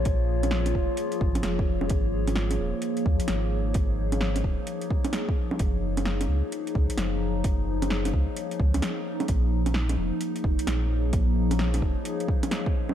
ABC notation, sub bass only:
X:1
M:4/4
L:1/16
Q:"Swing 16ths" 1/4=130
K:Bbm
V:1 name="Sub bass" clef=bass
B,,,6 F,,, z3 A,,,2 F,,,4 | A,,,6 E,,,2 z2 E,,2 A,,,4 | A,,,6 E,,,2 z8 | G,,,6 D,,2 z2 D,,2 G,,,4 |
G,,,6 D,,2 z2 D,,2 z4 | B,,,6 F,,,2 z2 F,,,2 B,,,4 | B,,,6 F,,,2 z8 |]